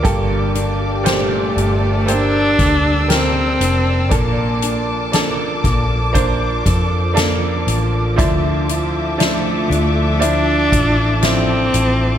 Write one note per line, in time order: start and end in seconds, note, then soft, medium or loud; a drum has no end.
0.00 1.53 G2 medium
0.00 1.09 A#3 medium
0.00 1.00 A#3 medium
0.00 0.55 D4 medium
0.00 1.01 G4 medium
0.00 1.06 A4 medium
0.00 8.14 D5 medium
0.00 2.04 D6 medium
0.05 1.53 G1 medium
0.05 4.12 G2 medium
0.05 4.08 G4 medium
0.05 1.01 A4 medium
0.05 8.15 A5 medium
0.05 kick loud
0.05 closed hi-hat medium
0.55 2.08 D4 medium
0.55 closed hi-hat medium
1.04 2.02 A#2 medium
1.04 2.02 G4 medium
1.04 2.59 A4 medium
1.04 2.02 C5 medium
1.04 snare loud
1.04 closed hi-hat medium
1.09 2.13 A3 medium
1.57 2.55 G1 medium
1.57 closed hi-hat medium
2.06 3.04 A#3 medium
2.06 3.60 D4 medium
2.06 3.04 G4 medium
2.06 3.05 C5 medium
2.06 4.10 E6 medium
2.06 closed hi-hat medium
2.12 3.14 D4 loud
2.59 3.57 D2 medium
2.59 5.13 A4 medium
2.59 kick loud
2.59 closed hi-hat medium
3.08 4.05 A#3 medium
3.08 5.17 A#3 medium
3.08 4.06 G4 medium
3.08 4.06 A#4 medium
3.08 snare loud
3.08 closed hi-hat medium
3.13 4.14 C4 loud
3.60 4.11 F1 medium
3.60 4.63 D4 medium
3.60 closed hi-hat medium
4.09 5.60 A#1 loud
4.09 5.60 A#2 medium
4.09 12.18 F3 medium
4.09 5.07 A#3 medium
4.09 5.14 A#3 medium
4.09 5.08 D4 medium
4.09 5.08 A4 medium
4.09 8.14 D6 medium
4.09 kick loud
4.09 closed hi-hat medium
4.62 6.15 D4 medium
4.62 closed hi-hat medium
5.12 6.09 A#3 medium
5.12 6.10 D4 medium
5.12 6.65 A4 medium
5.12 6.10 A4 medium
5.12 snare loud
5.12 closed hi-hat medium
5.64 6.62 A#1 medium
5.64 7.16 A#3 medium
5.64 kick medium
5.64 closed hi-hat medium
6.13 7.10 A#3 medium
6.13 7.11 D4 medium
6.13 7.67 D4 medium
6.13 7.11 C5 medium
6.13 kick medium
6.13 closed hi-hat medium
6.66 7.63 F2 medium
6.66 9.20 A4 medium
6.66 kick medium
6.66 closed hi-hat medium
7.14 8.12 A#3 medium
7.14 8.29 A#3 medium
7.14 8.12 D4 medium
7.14 8.13 A4 medium
7.14 snare loud
7.14 closed hi-hat medium
7.67 8.18 A1 medium
7.67 8.69 D4 medium
7.67 closed hi-hat medium
8.16 9.67 D2 loud
8.16 9.66 D3 medium
8.16 12.18 D3 medium
8.16 9.14 F3 medium
8.16 9.14 D4 medium
8.16 9.15 E4 medium
8.16 12.18 E5 medium
8.16 12.18 A5 medium
8.16 12.18 D6 medium
8.16 kick loud
8.16 closed hi-hat medium
8.69 10.21 E4 medium
8.69 closed hi-hat medium
9.18 10.16 F3 medium
9.18 10.23 A3 medium
9.18 10.16 D4 medium
9.18 10.16 E4 medium
9.18 10.72 A4 medium
9.18 snare loud
9.18 closed hi-hat medium
9.70 10.68 D2 medium
9.70 11.23 D4 medium
9.70 closed hi-hat medium
10.19 11.17 F3 medium
10.19 11.18 D4 medium
10.19 11.25 D4 loud
10.19 11.18 E4 medium
10.19 11.73 E4 medium
10.19 closed hi-hat medium
10.72 11.70 A1 medium
10.72 12.18 A4 medium
10.72 kick medium
10.72 closed hi-hat medium
11.22 12.18 F3 medium
11.22 12.18 C4 loud
11.22 12.18 D4 medium
11.22 12.18 D4 soft
11.22 12.18 E4 medium
11.22 snare loud
11.22 closed hi-hat medium
11.74 12.18 A1 medium
11.74 12.18 E4 medium
11.74 closed hi-hat medium